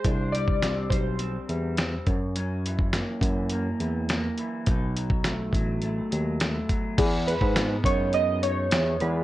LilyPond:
<<
  \new Staff \with { instrumentName = "Synth keys" } { \time 4/4 \key e \major \tempo 4 = 104 c''8 d''4 c''4 r4. | r1 | r1 | gis'8 b'4 cis''8 dis''8 cis''4 b'8 | }
  \new Staff \with { instrumentName = "Clean electric guitar" } { \clef bass \time 4/4 \key e \major d'8 g8 c'8 g8 c'8 g8 c'8 fis,8 | <fis, cis'>8 e8 ais8 e8 ais8 e8 ais8 e8 | <b, dis'>8 fis8 a8 fis8 a8 fis8 a8 fis8 | e8 gis8 b8 dis'8 b8 dis'8 b8 gis8 | }
  \new Staff \with { instrumentName = "Tine electric piano" } { \clef bass \time 4/4 \key e \major c,4. b,,4 e,4 fis,8~ | fis,4. fis,4 e,4 r8 | b,,4. a,,4 dis,4 r8 | e,8. gis,8. fis,4. e,8 e,8 | }
  \new DrumStaff \with { instrumentName = "Drums" } \drummode { \time 4/4 <hh bd>8 hh16 bd16 <hh sn>8 <hh bd>8 hh8 hh8 <hh sn>8 <hh bd>8 | hh8 hh16 bd16 <hh sn>8 <hh bd>8 hh8 hh8 <hh sn>8 hh8 | <hh bd>8 hh16 bd16 <hh sn>8 <hh bd>8 hh8 hh8 <hh sn>8 <hh bd>8 | <cymc hh bd>8 hh16 bd16 <hh sn>8 <hh bd>8 hh8 hh8 <hh sn>8 hh8 | }
>>